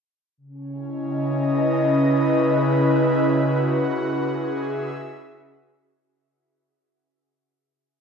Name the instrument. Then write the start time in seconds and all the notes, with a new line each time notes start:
analog synth pad
0.38 C#3
0.49 C#4
0.67 E4
0.87 D#5
1.19 B4
3.26 F#4
3.90 G#4
4.42 E5